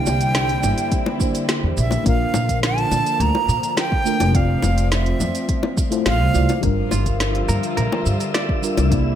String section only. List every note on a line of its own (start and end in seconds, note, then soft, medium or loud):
0.00 2.04 D3 medium
0.00 2.02 G3 medium
0.00 2.04 C4 medium
0.00 2.04 E4 medium
2.05 4.32 D3 medium
2.05 6.59 F3 medium
4.34 6.61 C4 medium
6.63 9.15 D3 medium
6.63 8.89 F3 medium
6.63 9.15 G3 medium
6.63 8.89 F4 medium
8.92 9.15 C4 medium
8.92 9.15 E4 medium